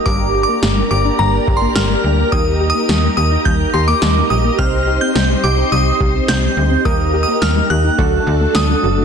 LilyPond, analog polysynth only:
\new Staff \with { instrumentName = "Analog polysynth" } { \time 4/4 \key g \minor \tempo 4 = 106 <bes d' g' bes'>1 | <bes ees' g' bes'>1 | <c' ees' g' c''>1 | <bes ees' g' bes'>2 <a d' fis' a'>2 | }